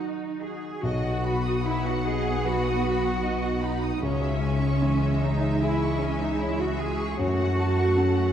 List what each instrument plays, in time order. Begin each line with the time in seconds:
Already playing: grand piano D#2 D#4 F#4 A#4, harp D#3 F#3 F#4, cello section D#4, viola section D#4 F#4
0.00 harp D#4
0.41 harp F#4, cello section G#4
0.83 grand piano B1, double bass section B1, harp B2, viola section B3, cello section F#4, violin section D#5 F#5
1.05 violin section F#5
1.25 harp F#4, violin section B5
1.45 violin section D#6
1.65 grand piano D#4, harp D#4, cello section E4, violin section B5
1.86 cello section F#4, violin section F#5
2.06 harp F#4, cello section G#4, violin section D#5
2.27 violin section F#5
2.44 harp F#3, grand piano F#4 B4, cello section F#4, violin section B5
2.66 violin section D#6
2.85 harp F#4, violin section B5
3.06 violin section F#5
3.24 harp D#4, violin section D#5
3.44 violin section F#5
3.63 cello section D#4, harp F#4, violin section B5
3.83 violin section D#6
4.03 grand piano C#2, double bass section C#2, harp C#3, viola section G#3, cello section C#4, violin section C#5 E5
4.22 violin section E5
4.43 harp G#4, violin section G#5
4.62 violin section C#6
4.81 harp E3, grand piano C#4, violin section G#5
5.02 violin section E5
5.21 cello section D#4, harp G#4, violin section C#5
5.42 violin section E5
5.62 harp G#3, cello section E4, grand piano E4 G#4, violin section G#5
5.82 violin section C#6
6.01 cello section C#4, harp G#4, violin section G#5
6.21 cello section D#4, violin section E5
6.40 harp E4, cello section E4, violin section C#5
6.60 cello section F#4, violin section E5
6.78 cello section G#4, harp G#4, violin section G#5
6.99 violin section C#6
7.18 double bass section F#2, harp F#2, grand piano F#2, viola section A3, cello section F#4, violin section C#5 F#5
7.39 violin section F#5
7.58 harp F#4, violin section A5
7.77 violin section C#6
7.97 harp C#4, grand piano C#4, violin section A5
8.16 violin section F#5